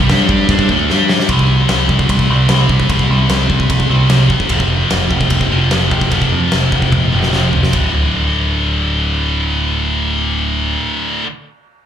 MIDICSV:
0, 0, Header, 1, 4, 480
1, 0, Start_track
1, 0, Key_signature, -1, "minor"
1, 0, Tempo, 400802
1, 1548, Time_signature, 4, 2, 24, 8
1, 5877, Tempo, 405132
1, 14113, End_track
2, 0, Start_track
2, 0, Title_t, "Distorted electric guitar"
2, 0, Program_c, 0, 30
2, 6, Note_on_c, 0, 55, 104
2, 109, Note_off_c, 0, 55, 0
2, 123, Note_on_c, 0, 55, 88
2, 131, Note_on_c, 0, 62, 109
2, 138, Note_on_c, 0, 67, 109
2, 346, Note_off_c, 0, 55, 0
2, 349, Note_off_c, 0, 62, 0
2, 355, Note_off_c, 0, 67, 0
2, 361, Note_on_c, 0, 55, 88
2, 364, Note_on_c, 0, 62, 82
2, 370, Note_on_c, 0, 67, 98
2, 581, Note_off_c, 0, 55, 0
2, 591, Note_off_c, 0, 62, 0
2, 593, Note_off_c, 0, 67, 0
2, 596, Note_on_c, 0, 55, 99
2, 607, Note_on_c, 0, 62, 108
2, 701, Note_off_c, 0, 55, 0
2, 712, Note_off_c, 0, 62, 0
2, 716, Note_on_c, 0, 55, 82
2, 725, Note_on_c, 0, 62, 100
2, 826, Note_off_c, 0, 55, 0
2, 831, Note_off_c, 0, 62, 0
2, 847, Note_on_c, 0, 50, 87
2, 852, Note_on_c, 0, 57, 96
2, 858, Note_on_c, 0, 62, 89
2, 1071, Note_off_c, 0, 50, 0
2, 1074, Note_off_c, 0, 57, 0
2, 1077, Note_off_c, 0, 62, 0
2, 1085, Note_on_c, 0, 55, 99
2, 1094, Note_on_c, 0, 62, 97
2, 1098, Note_on_c, 0, 67, 105
2, 1548, Note_off_c, 0, 55, 0
2, 1551, Note_on_c, 0, 48, 85
2, 1553, Note_off_c, 0, 62, 0
2, 1555, Note_off_c, 0, 67, 0
2, 1568, Note_on_c, 0, 55, 95
2, 1585, Note_on_c, 0, 60, 100
2, 2733, Note_off_c, 0, 48, 0
2, 2741, Note_off_c, 0, 55, 0
2, 2754, Note_off_c, 0, 60, 0
2, 2758, Note_on_c, 0, 60, 75
2, 2773, Note_on_c, 0, 55, 71
2, 2789, Note_on_c, 0, 48, 68
2, 2985, Note_off_c, 0, 55, 0
2, 2989, Note_off_c, 0, 48, 0
2, 3004, Note_on_c, 0, 48, 72
2, 3020, Note_on_c, 0, 55, 78
2, 3038, Note_off_c, 0, 60, 0
2, 3043, Note_on_c, 0, 60, 84
2, 3461, Note_off_c, 0, 48, 0
2, 3469, Note_off_c, 0, 55, 0
2, 3475, Note_on_c, 0, 48, 81
2, 3492, Note_on_c, 0, 55, 85
2, 3510, Note_off_c, 0, 60, 0
2, 3515, Note_on_c, 0, 60, 97
2, 4659, Note_off_c, 0, 48, 0
2, 4667, Note_off_c, 0, 60, 0
2, 4668, Note_off_c, 0, 55, 0
2, 4672, Note_on_c, 0, 60, 75
2, 4692, Note_on_c, 0, 55, 69
2, 4710, Note_on_c, 0, 48, 64
2, 4886, Note_off_c, 0, 48, 0
2, 4900, Note_on_c, 0, 48, 78
2, 4903, Note_off_c, 0, 55, 0
2, 4917, Note_on_c, 0, 55, 83
2, 4932, Note_off_c, 0, 60, 0
2, 4937, Note_on_c, 0, 60, 81
2, 5373, Note_off_c, 0, 48, 0
2, 5380, Note_on_c, 0, 41, 75
2, 5382, Note_off_c, 0, 55, 0
2, 5400, Note_on_c, 0, 48, 87
2, 5416, Note_off_c, 0, 60, 0
2, 5421, Note_on_c, 0, 53, 87
2, 6573, Note_off_c, 0, 41, 0
2, 6582, Note_off_c, 0, 48, 0
2, 6587, Note_off_c, 0, 53, 0
2, 6592, Note_on_c, 0, 53, 86
2, 6613, Note_on_c, 0, 48, 75
2, 6629, Note_on_c, 0, 41, 61
2, 6811, Note_off_c, 0, 41, 0
2, 6825, Note_on_c, 0, 41, 74
2, 6828, Note_off_c, 0, 48, 0
2, 6849, Note_on_c, 0, 48, 82
2, 6860, Note_off_c, 0, 53, 0
2, 6865, Note_on_c, 0, 53, 79
2, 7288, Note_off_c, 0, 41, 0
2, 7303, Note_on_c, 0, 41, 79
2, 7305, Note_off_c, 0, 48, 0
2, 7323, Note_on_c, 0, 48, 87
2, 7334, Note_off_c, 0, 53, 0
2, 7339, Note_on_c, 0, 53, 92
2, 8489, Note_off_c, 0, 53, 0
2, 8491, Note_off_c, 0, 41, 0
2, 8502, Note_off_c, 0, 48, 0
2, 8504, Note_on_c, 0, 53, 69
2, 8523, Note_on_c, 0, 48, 63
2, 8538, Note_on_c, 0, 41, 60
2, 8727, Note_off_c, 0, 41, 0
2, 8732, Note_off_c, 0, 53, 0
2, 8741, Note_on_c, 0, 41, 74
2, 8742, Note_off_c, 0, 48, 0
2, 8766, Note_on_c, 0, 48, 75
2, 8780, Note_on_c, 0, 53, 75
2, 9211, Note_off_c, 0, 41, 0
2, 9221, Note_on_c, 0, 38, 90
2, 9224, Note_off_c, 0, 48, 0
2, 9231, Note_off_c, 0, 53, 0
2, 9243, Note_on_c, 0, 45, 87
2, 9263, Note_on_c, 0, 50, 88
2, 13368, Note_off_c, 0, 38, 0
2, 13390, Note_off_c, 0, 45, 0
2, 13410, Note_off_c, 0, 50, 0
2, 14113, End_track
3, 0, Start_track
3, 0, Title_t, "Picked electric bass"
3, 0, Program_c, 1, 34
3, 123, Note_on_c, 1, 43, 92
3, 338, Note_off_c, 1, 43, 0
3, 345, Note_on_c, 1, 43, 95
3, 571, Note_off_c, 1, 43, 0
3, 584, Note_on_c, 1, 43, 97
3, 694, Note_off_c, 1, 43, 0
3, 701, Note_on_c, 1, 43, 92
3, 817, Note_off_c, 1, 43, 0
3, 832, Note_on_c, 1, 38, 102
3, 1054, Note_off_c, 1, 38, 0
3, 1079, Note_on_c, 1, 43, 90
3, 1520, Note_off_c, 1, 43, 0
3, 1546, Note_on_c, 1, 36, 92
3, 1947, Note_off_c, 1, 36, 0
3, 2043, Note_on_c, 1, 36, 79
3, 2237, Note_off_c, 1, 36, 0
3, 2271, Note_on_c, 1, 36, 88
3, 2469, Note_off_c, 1, 36, 0
3, 2505, Note_on_c, 1, 36, 91
3, 2706, Note_off_c, 1, 36, 0
3, 2754, Note_on_c, 1, 36, 87
3, 2951, Note_off_c, 1, 36, 0
3, 2982, Note_on_c, 1, 36, 81
3, 3184, Note_off_c, 1, 36, 0
3, 3222, Note_on_c, 1, 36, 83
3, 3425, Note_off_c, 1, 36, 0
3, 3466, Note_on_c, 1, 36, 85
3, 3667, Note_off_c, 1, 36, 0
3, 3714, Note_on_c, 1, 36, 83
3, 3912, Note_off_c, 1, 36, 0
3, 3949, Note_on_c, 1, 36, 78
3, 4149, Note_off_c, 1, 36, 0
3, 4194, Note_on_c, 1, 36, 84
3, 4393, Note_off_c, 1, 36, 0
3, 4426, Note_on_c, 1, 36, 95
3, 4628, Note_off_c, 1, 36, 0
3, 4675, Note_on_c, 1, 36, 89
3, 4874, Note_off_c, 1, 36, 0
3, 4923, Note_on_c, 1, 36, 83
3, 5119, Note_off_c, 1, 36, 0
3, 5146, Note_on_c, 1, 31, 82
3, 5350, Note_off_c, 1, 31, 0
3, 5392, Note_on_c, 1, 29, 93
3, 5795, Note_off_c, 1, 29, 0
3, 5890, Note_on_c, 1, 29, 78
3, 6083, Note_off_c, 1, 29, 0
3, 6114, Note_on_c, 1, 29, 83
3, 6314, Note_off_c, 1, 29, 0
3, 6351, Note_on_c, 1, 29, 93
3, 6552, Note_off_c, 1, 29, 0
3, 6602, Note_on_c, 1, 29, 79
3, 6798, Note_off_c, 1, 29, 0
3, 6835, Note_on_c, 1, 29, 80
3, 7034, Note_off_c, 1, 29, 0
3, 7072, Note_on_c, 1, 29, 80
3, 7272, Note_off_c, 1, 29, 0
3, 7310, Note_on_c, 1, 29, 87
3, 7511, Note_off_c, 1, 29, 0
3, 7555, Note_on_c, 1, 41, 88
3, 7753, Note_off_c, 1, 41, 0
3, 7795, Note_on_c, 1, 29, 80
3, 7994, Note_off_c, 1, 29, 0
3, 8030, Note_on_c, 1, 29, 84
3, 8230, Note_off_c, 1, 29, 0
3, 8264, Note_on_c, 1, 29, 88
3, 8467, Note_off_c, 1, 29, 0
3, 8516, Note_on_c, 1, 29, 83
3, 8714, Note_off_c, 1, 29, 0
3, 8760, Note_on_c, 1, 29, 85
3, 8957, Note_off_c, 1, 29, 0
3, 9004, Note_on_c, 1, 29, 74
3, 9199, Note_off_c, 1, 29, 0
3, 9232, Note_on_c, 1, 26, 83
3, 12812, Note_off_c, 1, 26, 0
3, 14113, End_track
4, 0, Start_track
4, 0, Title_t, "Drums"
4, 110, Note_on_c, 9, 52, 62
4, 114, Note_on_c, 9, 38, 108
4, 230, Note_off_c, 9, 52, 0
4, 234, Note_off_c, 9, 38, 0
4, 348, Note_on_c, 9, 36, 101
4, 468, Note_off_c, 9, 36, 0
4, 586, Note_on_c, 9, 36, 116
4, 589, Note_on_c, 9, 52, 73
4, 704, Note_off_c, 9, 36, 0
4, 704, Note_on_c, 9, 36, 88
4, 709, Note_off_c, 9, 52, 0
4, 824, Note_off_c, 9, 36, 0
4, 826, Note_on_c, 9, 36, 85
4, 946, Note_off_c, 9, 36, 0
4, 1076, Note_on_c, 9, 38, 64
4, 1195, Note_off_c, 9, 38, 0
4, 1310, Note_on_c, 9, 38, 99
4, 1430, Note_off_c, 9, 38, 0
4, 1432, Note_on_c, 9, 38, 94
4, 1543, Note_on_c, 9, 53, 74
4, 1545, Note_on_c, 9, 36, 112
4, 1551, Note_off_c, 9, 38, 0
4, 1663, Note_off_c, 9, 53, 0
4, 1665, Note_off_c, 9, 36, 0
4, 1667, Note_on_c, 9, 36, 86
4, 1787, Note_off_c, 9, 36, 0
4, 2021, Note_on_c, 9, 53, 61
4, 2025, Note_on_c, 9, 38, 104
4, 2141, Note_off_c, 9, 53, 0
4, 2145, Note_off_c, 9, 38, 0
4, 2265, Note_on_c, 9, 36, 74
4, 2385, Note_off_c, 9, 36, 0
4, 2386, Note_on_c, 9, 36, 80
4, 2506, Note_off_c, 9, 36, 0
4, 2506, Note_on_c, 9, 36, 94
4, 2508, Note_on_c, 9, 53, 73
4, 2624, Note_off_c, 9, 36, 0
4, 2624, Note_on_c, 9, 36, 81
4, 2628, Note_off_c, 9, 53, 0
4, 2744, Note_off_c, 9, 36, 0
4, 2978, Note_on_c, 9, 53, 62
4, 2982, Note_on_c, 9, 38, 109
4, 3098, Note_off_c, 9, 53, 0
4, 3102, Note_off_c, 9, 38, 0
4, 3226, Note_on_c, 9, 36, 82
4, 3346, Note_off_c, 9, 36, 0
4, 3348, Note_on_c, 9, 36, 79
4, 3467, Note_off_c, 9, 36, 0
4, 3467, Note_on_c, 9, 36, 97
4, 3467, Note_on_c, 9, 53, 64
4, 3585, Note_off_c, 9, 36, 0
4, 3585, Note_on_c, 9, 36, 85
4, 3587, Note_off_c, 9, 53, 0
4, 3705, Note_off_c, 9, 36, 0
4, 3945, Note_on_c, 9, 53, 64
4, 3948, Note_on_c, 9, 38, 95
4, 4065, Note_off_c, 9, 53, 0
4, 4068, Note_off_c, 9, 38, 0
4, 4188, Note_on_c, 9, 36, 78
4, 4308, Note_off_c, 9, 36, 0
4, 4309, Note_on_c, 9, 36, 76
4, 4427, Note_on_c, 9, 53, 75
4, 4429, Note_off_c, 9, 36, 0
4, 4429, Note_on_c, 9, 36, 95
4, 4547, Note_off_c, 9, 53, 0
4, 4548, Note_off_c, 9, 36, 0
4, 4548, Note_on_c, 9, 36, 84
4, 4668, Note_off_c, 9, 36, 0
4, 4905, Note_on_c, 9, 53, 69
4, 4908, Note_on_c, 9, 38, 103
4, 5024, Note_off_c, 9, 53, 0
4, 5028, Note_off_c, 9, 38, 0
4, 5149, Note_on_c, 9, 36, 81
4, 5268, Note_off_c, 9, 36, 0
4, 5269, Note_on_c, 9, 36, 84
4, 5380, Note_on_c, 9, 53, 70
4, 5389, Note_off_c, 9, 36, 0
4, 5390, Note_on_c, 9, 36, 93
4, 5500, Note_off_c, 9, 53, 0
4, 5509, Note_off_c, 9, 36, 0
4, 5509, Note_on_c, 9, 36, 79
4, 5629, Note_off_c, 9, 36, 0
4, 5873, Note_on_c, 9, 53, 61
4, 5877, Note_on_c, 9, 38, 96
4, 5992, Note_off_c, 9, 53, 0
4, 5995, Note_off_c, 9, 38, 0
4, 6112, Note_on_c, 9, 36, 77
4, 6231, Note_off_c, 9, 36, 0
4, 6232, Note_on_c, 9, 36, 82
4, 6344, Note_on_c, 9, 53, 67
4, 6350, Note_off_c, 9, 36, 0
4, 6351, Note_on_c, 9, 36, 92
4, 6463, Note_off_c, 9, 53, 0
4, 6470, Note_off_c, 9, 36, 0
4, 6470, Note_on_c, 9, 36, 79
4, 6589, Note_off_c, 9, 36, 0
4, 6826, Note_on_c, 9, 53, 59
4, 6830, Note_on_c, 9, 38, 109
4, 6945, Note_off_c, 9, 53, 0
4, 6948, Note_off_c, 9, 38, 0
4, 7070, Note_on_c, 9, 36, 83
4, 7189, Note_off_c, 9, 36, 0
4, 7189, Note_on_c, 9, 36, 82
4, 7307, Note_off_c, 9, 36, 0
4, 7307, Note_on_c, 9, 53, 59
4, 7309, Note_on_c, 9, 36, 93
4, 7425, Note_off_c, 9, 53, 0
4, 7428, Note_off_c, 9, 36, 0
4, 7429, Note_on_c, 9, 36, 80
4, 7547, Note_off_c, 9, 36, 0
4, 7783, Note_on_c, 9, 53, 55
4, 7786, Note_on_c, 9, 38, 94
4, 7901, Note_off_c, 9, 53, 0
4, 7905, Note_off_c, 9, 38, 0
4, 8027, Note_on_c, 9, 36, 76
4, 8146, Note_off_c, 9, 36, 0
4, 8147, Note_on_c, 9, 36, 72
4, 8259, Note_on_c, 9, 48, 62
4, 8265, Note_off_c, 9, 36, 0
4, 8267, Note_on_c, 9, 36, 95
4, 8377, Note_off_c, 9, 48, 0
4, 8385, Note_off_c, 9, 36, 0
4, 8503, Note_on_c, 9, 47, 60
4, 8621, Note_off_c, 9, 47, 0
4, 8625, Note_on_c, 9, 38, 61
4, 8744, Note_off_c, 9, 38, 0
4, 8745, Note_on_c, 9, 38, 74
4, 8864, Note_off_c, 9, 38, 0
4, 8984, Note_on_c, 9, 43, 87
4, 9102, Note_off_c, 9, 43, 0
4, 9107, Note_on_c, 9, 38, 81
4, 9221, Note_on_c, 9, 43, 93
4, 9221, Note_on_c, 9, 53, 80
4, 9225, Note_off_c, 9, 38, 0
4, 9226, Note_on_c, 9, 36, 90
4, 9340, Note_off_c, 9, 43, 0
4, 9340, Note_off_c, 9, 53, 0
4, 9344, Note_off_c, 9, 36, 0
4, 14113, End_track
0, 0, End_of_file